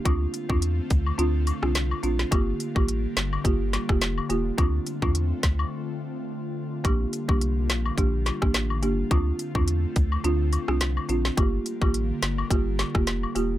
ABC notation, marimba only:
X:1
M:4/4
L:1/16
Q:"Swing 16ths" 1/4=106
K:Dm
V:1 name="Marimba"
[CDF]3 [CDF] z4 [CDF]3 [CDF] z2 [CDF] z | [B,FG]3 [B,FG] z4 [B,FG]3 [B,FG] z2 [B,FG] z | [CDF]3 [CDF] z12 | [B,DG]3 [B,DG] z4 [B,DG]3 [B,DG] z2 [B,DG] z |
[CDF]3 [CDF] z4 [CDF]3 [CDF] z2 [CDF] z | [B,FG]3 [B,FG] z4 [B,FG]3 [B,FG] z2 [B,FG] z |]